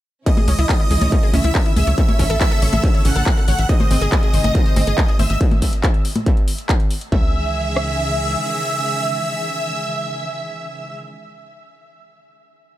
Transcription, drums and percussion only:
0.26 kick loud
0.26 closed hi-hat medium
0.37 closed hi-hat soft
0.37 high conga medium
0.48 open hi-hat loud
0.59 closed hi-hat medium
0.69 kick loud
0.69 clap loud
0.69 closed hi-hat medium
0.80 closed hi-hat soft
0.91 open hi-hat medium
1.01 closed hi-hat medium
1.01 high conga medium
1.12 kick loud
1.12 closed hi-hat medium
1.23 closed hi-hat soft
1.34 open hi-hat loud
1.34 high conga medium
1.44 closed hi-hat medium
1.55 kick loud
1.55 clap loud
1.55 closed hi-hat medium
1.66 closed hi-hat soft
1.76 open hi-hat medium
1.76 high conga medium
1.87 closed hi-hat medium
1.98 kick loud
1.98 closed hi-hat medium
2.09 closed hi-hat soft
2.09 high conga medium
2.19 kick medium
2.19 open hi-hat loud
2.30 closed hi-hat medium
2.41 kick loud
2.41 clap loud
2.41 closed hi-hat medium
2.51 closed hi-hat soft
2.62 open hi-hat loud
2.73 closed hi-hat medium
2.73 high conga medium
2.84 kick loud
2.84 closed hi-hat medium
2.94 closed hi-hat soft
3.05 open hi-hat loud
3.16 closed hi-hat medium
3.26 kick loud
3.26 clap loud
3.26 closed hi-hat medium
3.37 closed hi-hat soft
3.48 open hi-hat medium
3.59 closed hi-hat medium
3.69 kick loud
3.69 closed hi-hat medium
3.80 closed hi-hat soft
3.80 high conga medium
3.91 open hi-hat loud
4.01 closed hi-hat medium
4.12 kick loud
4.12 clap loud
4.12 closed hi-hat medium
4.23 closed hi-hat soft
4.34 open hi-hat loud
4.44 closed hi-hat medium
4.44 high conga medium
4.55 kick loud
4.55 closed hi-hat medium
4.66 closed hi-hat soft
4.76 open hi-hat loud
4.76 high conga medium
4.87 closed hi-hat medium
4.98 kick loud
4.98 clap loud
4.98 closed hi-hat soft
5.08 closed hi-hat soft
5.19 open hi-hat medium
5.19 high conga medium
5.30 closed hi-hat medium
5.41 kick loud
5.41 closed hi-hat medium
5.51 closed hi-hat soft
5.51 high conga medium
5.62 kick medium
5.62 open hi-hat loud
5.73 closed hi-hat soft
5.83 kick loud
5.83 clap loud
5.83 closed hi-hat soft
5.94 closed hi-hat soft
6.05 open hi-hat loud
6.16 closed hi-hat medium
6.16 high conga medium
6.26 kick loud
6.26 closed hi-hat medium
6.37 closed hi-hat soft
6.48 open hi-hat loud
6.58 closed hi-hat soft
6.69 kick loud
6.69 clap loud
6.69 closed hi-hat medium
6.80 closed hi-hat soft
6.91 open hi-hat medium
7.01 closed hi-hat medium
7.12 kick loud
7.76 cross-stick medium

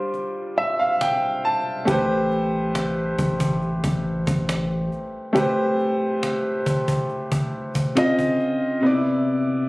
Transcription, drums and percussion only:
0.14 cajon slap soft
1.01 cajon slap loud
1.88 cajon bass loud
2.32 cajon slap soft
2.75 cajon slap loud
3.19 cajon bass medium
3.40 cajon bass loud
3.62 cajon slap soft
3.84 cajon bass loud
4.27 cajon bass loud
4.49 cajon slap loud
4.92 cajon slap soft
5.36 cajon bass loud
5.79 cajon slap soft
6.23 cajon slap loud
6.66 cajon bass loud
6.88 cajon bass loud
7.10 cajon slap soft
7.32 cajon bass loud
7.75 cajon bass loud
7.97 cajon slap loud
8.19 cajon bass medium
8.40 cajon slap soft

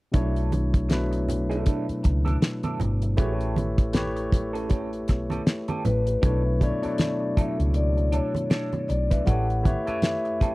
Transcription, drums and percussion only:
0.14 kick loud
0.14 closed hi-hat medium
0.14 muted conga soft
0.14 low conga medium
0.36 closed hi-hat soft
0.52 closed hi-hat medium
0.52 high conga medium
0.74 kick medium
0.74 closed hi-hat soft
0.90 snare loud
0.90 closed hi-hat medium
0.90 high conga medium
1.13 closed hi-hat soft
1.28 closed hi-hat medium
1.28 muted conga soft
1.28 low conga medium
1.51 closed hi-hat soft
1.66 kick medium
1.66 closed hi-hat medium
1.89 closed hi-hat soft
2.04 kick medium
2.04 closed hi-hat medium
2.26 closed hi-hat soft
2.26 high conga medium
2.42 snare loud
2.42 closed hi-hat medium
2.42 muted conga soft
2.63 closed hi-hat soft
2.63 high conga medium
2.80 closed hi-hat medium
2.80 muted conga soft
2.80 low conga medium
3.02 closed hi-hat medium
3.17 kick loud
3.17 closed hi-hat medium
3.17 muted conga soft
3.17 low conga medium
3.41 closed hi-hat soft
3.56 closed hi-hat medium
3.56 muted conga soft
3.56 high conga medium
3.78 kick medium
3.78 closed hi-hat soft
3.93 snare loud
3.93 closed hi-hat medium
3.93 muted conga soft
3.93 high conga medium
4.17 closed hi-hat soft
4.32 kick medium
4.32 closed hi-hat medium
4.32 muted conga soft
4.32 low conga medium
4.55 closed hi-hat soft
4.69 kick medium
4.69 closed hi-hat medium
4.69 muted conga soft
4.93 closed hi-hat soft
5.08 kick medium
5.08 snare soft
5.08 closed hi-hat medium
5.30 closed hi-hat soft
5.30 high conga medium
5.46 snare loud
5.46 closed hi-hat medium
5.46 muted conga soft
5.68 closed hi-hat soft
5.68 high conga medium
5.85 closed hi-hat medium
5.85 muted conga soft
5.85 low conga medium
6.07 closed hi-hat soft
6.23 kick loud
6.23 closed hi-hat medium
6.23 low conga medium
6.61 kick medium
6.61 closed hi-hat medium
6.61 high conga medium
6.83 closed hi-hat soft
6.98 snare loud
6.98 closed hi-hat medium
6.98 muted conga soft
6.98 high conga medium
7.37 kick medium
7.37 closed hi-hat medium
7.37 muted conga soft
7.37 low conga medium
7.60 closed hi-hat soft
7.74 closed hi-hat medium
7.74 muted conga soft
7.98 closed hi-hat soft
8.13 closed hi-hat medium
8.13 muted conga soft
8.35 closed hi-hat soft
8.35 high conga medium
8.50 snare loud
8.50 closed hi-hat medium
8.50 muted conga soft
8.73 closed hi-hat soft
8.73 high conga medium
8.89 closed hi-hat medium
8.89 muted conga soft
9.11 kick medium
9.11 closed hi-hat medium
9.27 kick loud
9.27 closed hi-hat medium
9.27 muted conga soft
9.27 low conga medium
9.50 closed hi-hat soft
9.65 kick medium
9.65 closed hi-hat medium
9.65 muted conga soft
9.65 high conga medium
9.87 closed hi-hat soft
10.02 snare loud
10.02 closed hi-hat medium
10.02 muted conga soft
10.02 high conga medium
10.25 closed hi-hat soft
10.41 kick medium
10.41 closed hi-hat medium
10.41 muted conga soft
10.41 low conga medium

